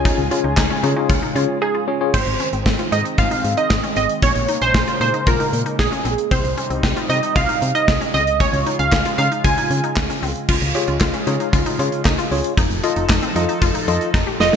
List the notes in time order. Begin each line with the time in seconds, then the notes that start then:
Already playing: C#2 C#3 G#3 C#4 F4 G#4 C#5 G#5
0.05 D#4, kick, closed hi-hat
0.18 C#2
0.31 C#4 F4 G#4 C#5, closed hi-hat
0.44 C#2 D#4
0.57 C#2 D#4, kick, snare, clap, closed hi-hat
0.70 C#4
0.83 C#3 C#4 D#4 F4 G#4 C#5, closed hi-hat
0.96 C#4 D#4 F4 G#4 C#5
1.09 C#2 F4, kick, closed hi-hat
1.22 D#4
1.35 C#3 C#4 F4 G#4 C#5, closed hi-hat
1.62 D#4 G#4
1.75 F4
1.88 C#4 F4 G#4 C#5
2.01 C#4 F4 G#4 C#5
2.13 G#1 D#3 G#3 C4 C5, kick, crash
2.27 G#1, closed hi-hat
2.40 C#4, closed hi-hat
2.53 G#1 C4, closed hi-hat
2.66 G#1 C4, kick, snare
2.79 F4, closed hi-hat
2.92 G#2 D#4 D#5, closed hi-hat
3.05 D#4, closed hi-hat
3.18 G#1 F4 F5, kick, closed hi-hat
3.31 D#4, closed hi-hat
3.44 G#2, closed hi-hat
3.57 D#4 D#5, closed hi-hat
3.70 G#1, kick, snare
3.83 C#4, closed hi-hat
3.96 G#1 C4 D#5, closed hi-hat
4.09 closed hi-hat
4.22 A#1 C#3 A#3 C#4 C#5, kick, closed hi-hat
4.36 A#1, closed hi-hat
4.48 D#4, closed hi-hat
4.61 A#1 C#4 C5, closed hi-hat
4.74 A#1 C#4, kick, snare
4.87 F4, closed hi-hat
5.01 A#2 D#4 C5, closed hi-hat
5.14 D#4, closed hi-hat
5.27 A#1 F4 A#4, kick, closed hi-hat
5.40 D#4, closed hi-hat
5.53 A#2, closed hi-hat
5.66 D#4, closed hi-hat
5.79 A#1 G#4, kick, snare
5.92 C#4, closed hi-hat
6.05 A#1 C4, closed hi-hat
6.18 closed hi-hat
6.31 C2 C3 G3 C4 D#4 C5, kick, closed hi-hat
6.44 C2, closed hi-hat
6.58 C#4, closed hi-hat
6.70 C2 C4, closed hi-hat
6.83 C2 C4, kick, snare
6.97 F4, closed hi-hat
7.09 C3 D#4 D#5, closed hi-hat
7.23 D#4, closed hi-hat
7.36 C2 F4 F5, kick, closed hi-hat
7.49 D#4, closed hi-hat
7.62 C3, closed hi-hat
7.75 D#4 D#5, closed hi-hat
7.88 C2, kick, snare
8.01 C#4, closed hi-hat
8.14 C#2 C#3 G#3 C4 F4 D#5, closed hi-hat
8.27 closed hi-hat
8.40 C#4 C#5, kick, closed hi-hat
8.53 C#2, closed hi-hat
8.66 D#4, closed hi-hat
8.79 C#2 C#4 F5, closed hi-hat
8.92 C#2 C#4, kick, snare, clap
9.05 F4, closed hi-hat
9.18 C#3 D#4 F5, closed hi-hat
9.32 D#4, closed hi-hat
9.44 C#2 F4 G#5, kick, closed hi-hat
9.58 D#4, closed hi-hat
9.71 C#3, closed hi-hat
9.84 D#4, closed hi-hat
9.97 C#2, kick, snare, clap
10.10 C#4, closed hi-hat
10.23 C#2 C4, open hi-hat
10.36 closed hi-hat
10.49 C#2 C#3 G#3 F4, kick, crash
10.62 C#2, closed hi-hat
10.75 F4 G4 G#4 C#5, closed hi-hat
10.88 C#2 F4, closed hi-hat
11.01 C#2 F4, kick, snare, clap
11.14 C#4, closed hi-hat
11.27 C#3 D#4 F4 G#4 C#5, closed hi-hat
11.40 D#4, closed hi-hat
11.53 C#2 F4, kick, closed hi-hat
11.66 D#4, closed hi-hat
11.79 C#3 F4 G#4 C#5, closed hi-hat
11.92 closed hi-hat
12.05 C#2 D#4, kick, snare, clap
12.18 F4, closed hi-hat
12.31 C#2 F4 G#4 C#5, open hi-hat
12.44 closed hi-hat
12.57 F1 F3 D#4 A4, kick, closed hi-hat
12.70 F1, closed hi-hat
12.83 F4 A4 D#5, closed hi-hat
12.96 F1 D#4, closed hi-hat
13.09 F1 D#4, kick, snare, clap
13.23 C4, closed hi-hat
13.36 F2 D#4 F4 A4 D#5, closed hi-hat
13.49 D#4, closed hi-hat
13.62 F1 F4, kick, closed hi-hat
13.75 D#4, closed hi-hat
13.88 F2 F4 A4 D#5, closed hi-hat
14.01 closed hi-hat
14.14 F1 D#4, kick, snare
14.27 G4
14.40 F1 F4 A4 D#5, snare